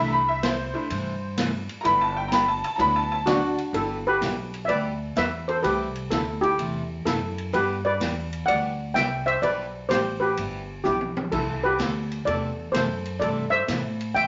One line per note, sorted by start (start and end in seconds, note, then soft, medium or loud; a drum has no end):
0.00 0.72 C2 loud
0.00 0.19 C3 medium
0.00 0.19 E3 medium
0.00 0.19 A3 medium
0.00 0.31 A3 medium
0.00 0.32 D4 medium
0.00 0.19 E4 medium
0.00 0.32 E4 medium
0.00 0.19 A4 medium
0.00 0.12 E5 loud
0.08 0.14 A#5 medium
0.12 0.27 B5 loud
0.28 0.43 E5 medium
0.43 0.55 C3 medium
0.43 0.55 E3 medium
0.43 0.55 A3 medium
0.43 0.56 E4 medium
0.43 0.56 A4 medium
0.43 1.35 C5 loud
0.43 snare medium
0.43 hi-hat pedal medium
0.43 ride medium
0.73 0.88 A3 medium
0.73 0.88 D4 soft
0.73 0.89 E4 medium
0.90 1.66 G2 medium
0.90 1.13 C3 medium
0.90 1.13 E3 medium
0.90 1.14 A3 medium
0.90 1.14 E4 medium
0.90 1.14 A4 medium
0.90 ride medium
1.37 1.49 C3 medium
1.37 1.50 E3 medium
1.37 1.50 A3 medium
1.37 1.50 E4 medium
1.37 1.50 A4 medium
1.37 snare medium
1.37 hi-hat pedal medium
1.37 ride medium
1.69 ride medium
1.81 2.61 G1 loud
1.81 2.08 G3 medium
1.81 2.20 A3 medium
1.81 2.21 B3 medium
1.81 2.21 E4 medium
1.81 1.85 A#5 medium
1.81 ride medium
1.85 2.08 B3 medium
1.85 2.08 E4 medium
1.85 2.08 G4 medium
1.85 2.00 B5 loud
2.01 2.16 A5 medium
2.17 2.32 G5 medium
2.28 2.44 G3 medium
2.28 2.44 B3 medium
2.28 2.32 A#5 medium
2.28 snare medium
2.28 hi-hat pedal medium
2.28 ride medium
2.33 2.45 E4 medium
2.33 2.45 G4 medium
2.33 2.48 B5 loud
2.48 2.63 A5 medium
2.64 2.79 A5 loud
2.64 ride medium
2.76 3.55 D2 loud
2.76 3.02 D3 medium
2.76 3.15 F#3 medium
2.76 3.02 F#3 medium
2.76 3.02 A3 medium
2.76 3.15 B3 medium
2.76 3.02 D4 medium
2.76 3.16 E4 medium
2.76 3.02 F#4 medium
2.76 2.80 A#5 medium
2.76 ride medium
2.80 3.03 B4 medium
2.80 2.95 B5 loud
2.96 3.10 A5 loud
3.12 3.27 A5 loud
3.26 3.39 D3 medium
3.26 3.39 F#3 medium
3.26 3.39 A3 medium
3.26 3.71 D4 medium
3.26 3.39 D4 medium
3.26 3.75 F#4 medium
3.26 3.56 F#4 loud
3.26 3.39 F#4 medium
3.26 3.39 B4 medium
3.26 3.58 D5 loud
3.26 snare medium
3.26 hi-hat pedal medium
3.26 ride medium
3.58 ride soft
3.73 4.20 G1 medium
3.73 3.97 G3 medium
3.73 3.97 B3 medium
3.73 3.97 E4 medium
3.73 4.04 E4 medium
3.73 3.98 G4 medium
3.73 4.07 A4 medium
3.73 ride medium
4.07 4.61 G4 medium
4.07 4.67 B4 loud
4.21 4.67 B1 loud
4.21 4.34 G3 medium
4.21 4.34 B3 medium
4.21 4.34 E4 medium
4.21 4.34 G4 medium
4.21 snare medium
4.21 hi-hat pedal medium
4.21 ride medium
4.54 ride medium
4.65 5.15 D2 medium
4.65 5.17 D5 loud
4.65 4.69 E5 medium
4.65 ride medium
4.69 4.92 G3 medium
4.69 4.92 B3 medium
4.69 4.93 E4 medium
4.69 4.92 G4 medium
4.69 5.13 B4 medium
5.16 5.63 E2 medium
5.16 5.28 G3 medium
5.16 5.29 B3 medium
5.16 5.29 E4 medium
5.16 5.29 G4 medium
5.16 5.32 B4 medium
5.16 5.31 E5 loud
5.16 snare medium
5.16 hi-hat pedal medium
5.16 ride medium
5.48 5.63 A4 medium
5.48 5.63 C5 medium
5.48 ride soft
5.63 6.10 C2 medium
5.63 5.86 C3 medium
5.63 5.86 E3 medium
5.63 5.87 A3 medium
5.63 5.87 E4 medium
5.63 6.08 G4 medium
5.63 5.87 A4 medium
5.63 6.12 B4 medium
5.63 ride medium
5.95 ride soft
6.11 6.57 D2 loud
6.11 6.23 C3 medium
6.11 6.23 E3 medium
6.11 6.23 A3 medium
6.11 6.24 E4 medium
6.11 6.27 E4 medium
6.11 6.25 A4 medium
6.11 6.24 A4 medium
6.11 snare medium
6.11 hi-hat pedal medium
6.11 ride medium
6.41 7.02 E4 medium
6.41 7.07 G4 medium
6.41 ride soft
6.58 7.04 E2 medium
6.58 6.81 C3 medium
6.58 6.82 E3 medium
6.58 6.82 A3 medium
6.58 6.82 E4 medium
6.58 6.82 A4 medium
6.58 ride medium
7.05 7.52 F#2 medium
7.05 7.18 C3 medium
7.05 7.18 E3 medium
7.05 7.19 A3 medium
7.05 7.50 E4 medium
7.05 7.19 E4 medium
7.05 7.50 A4 medium
7.05 7.19 A4 medium
7.05 snare medium
7.05 hi-hat pedal medium
7.05 ride medium
7.38 ride soft
7.53 7.99 G2 medium
7.53 7.76 G3 medium
7.53 7.76 B3 medium
7.53 7.76 E4 medium
7.53 7.76 G4 medium
7.53 7.69 G4 medium
7.53 7.68 B4 loud
7.53 ride medium
7.85 8.44 B4 medium
7.85 8.47 D5 loud
8.00 8.46 E2 medium
8.00 8.12 G3 medium
8.00 8.13 B3 medium
8.00 8.13 E4 medium
8.00 8.13 G4 medium
8.00 snare medium
8.00 hi-hat pedal medium
8.00 ride medium
8.33 ride soft
8.46 8.94 D2 medium
8.46 8.71 G3 medium
8.46 8.71 B3 medium
8.46 8.71 E4 medium
8.46 8.92 D5 medium
8.46 8.96 F#5 loud
8.46 ride medium
8.50 8.72 G4 medium
8.94 9.41 C2 medium
8.94 9.08 G3 medium
8.94 9.08 B3 medium
8.94 9.08 E4 medium
8.94 9.08 G4 medium
8.94 9.09 E5 medium
8.94 9.09 G5 loud
8.94 snare medium
8.94 hi-hat pedal medium
8.94 ride medium
9.26 9.41 C5 medium
9.26 9.43 E5 loud
9.26 ride soft
9.42 9.88 B1 medium
9.42 9.65 G3 medium
9.42 9.65 B3 medium
9.42 9.66 E4 medium
9.42 9.66 G4 medium
9.42 9.87 B4 medium
9.42 9.86 D5 loud
9.42 ride medium
9.89 10.36 A1 loud
9.89 10.02 G3 medium
9.89 10.02 B3 medium
9.89 10.02 E4 medium
9.89 10.20 G4 medium
9.89 10.02 G4 medium
9.89 10.22 C5 medium
9.89 snare medium
9.89 hi-hat pedal medium
9.89 ride medium
10.20 10.81 G4 medium
10.20 10.86 B4 medium
10.37 10.84 G1 medium
10.37 10.60 G3 medium
10.37 10.61 B3 medium
10.37 10.61 E4 medium
10.37 10.61 G4 medium
10.37 ride medium
10.84 11.31 B1 medium
10.84 10.96 G3 medium
10.84 10.97 B3 medium
10.84 10.97 E4 medium
10.84 11.29 E4 medium
10.84 11.28 G4 medium
10.84 10.97 G4 medium
10.84 hi-hat pedal medium
10.84 high tom soft
11.01 high tom medium
11.17 high tom medium
11.32 11.78 C2 medium
11.32 11.55 C3 medium
11.32 11.55 E3 medium
11.32 11.55 A3 medium
11.32 11.55 E4 medium
11.32 11.47 E4 medium
11.32 11.46 A4 medium
11.32 11.55 A4 medium
11.32 kick medium
11.32 crash medium
11.64 12.23 G4 medium
11.64 12.28 B4 loud
11.78 12.25 D2 medium
11.78 11.91 C3 medium
11.78 11.91 E3 medium
11.78 11.91 A3 medium
11.78 11.92 E4 medium
11.78 11.92 A4 medium
11.78 snare medium
11.78 hi-hat pedal medium
11.78 ride medium
12.11 ride soft
12.25 12.73 E2 medium
12.25 12.50 C3 soft
12.25 12.50 E3 medium
12.25 12.50 A3 medium
12.25 12.50 E4 medium
12.25 12.71 A4 medium
12.25 12.50 A4 medium
12.25 12.75 D5 loud
12.25 ride medium
12.72 13.20 F#2 medium
12.72 12.86 C3 medium
12.72 12.87 E3 medium
12.72 12.86 A3 medium
12.72 12.87 E4 medium
12.72 13.18 A4 medium
12.72 12.87 A4 medium
12.72 13.22 C5 medium
12.72 snare medium
12.72 hi-hat pedal medium
12.72 ride medium
13.05 ride soft
13.20 13.67 G2 medium
13.20 13.44 C3 medium
13.20 13.44 E3 medium
13.20 13.44 A3 medium
13.20 13.45 E4 medium
13.20 13.35 A4 medium
13.20 13.45 A4 medium
13.20 13.34 D5 medium
13.20 ride medium
13.50 14.11 C5 medium
13.50 14.11 E5 loud
13.68 14.14 A2 loud
13.68 13.80 C3 medium
13.68 13.81 E3 medium
13.68 13.81 A3 medium
13.68 13.81 E4 medium
13.68 13.81 A4 medium
13.68 snare medium
13.68 hi-hat pedal medium
13.68 ride medium
14.01 ride medium
14.15 14.27 E2 medium
14.15 14.27 C3 medium
14.15 14.27 E3 medium
14.15 14.27 A3 medium
14.15 14.27 E4 medium
14.15 14.27 A4 medium
14.15 14.27 E5 medium
14.15 14.27 G5 loud
14.15 ride medium